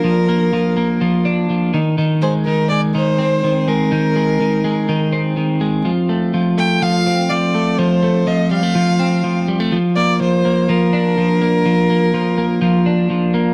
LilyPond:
<<
  \new Staff \with { instrumentName = "Violin" } { \time 4/4 \key bes \major \tempo 4 = 124 bes'2~ bes'8 r4. | r8 c''8 bes'8 d''8 c''4. bes'8~ | bes'2~ bes'8 r4. | r4. g''8 f''4 d''4 |
c''4 ees''8 f''2 r8 | r8 d''8 c''4 bes'2~ | bes'2. r4 | }
  \new Staff \with { instrumentName = "Clean electric guitar" } { \clef bass \time 4/4 \key bes \major <f bes d'>8 bes8 f8 bes8 f8 d'8 f8 ees8 | ees8 aes8 ees8 aes8 ees8 c'8 ees8 aes8 | ees8 aes8 ees8 aes8 ees8 c'8 ees8 aes8 | f8 a8 f8 a8 f8 c'8 f8 a8 |
f8 a8 f8 g16 a16 f8 c'8 f8 g16 a16 | f8 bes8 f8 bes8 f8 d'8 f8 bes8 | f8 bes8 f8 bes8 f8 d'8 f8 bes8 | }
>>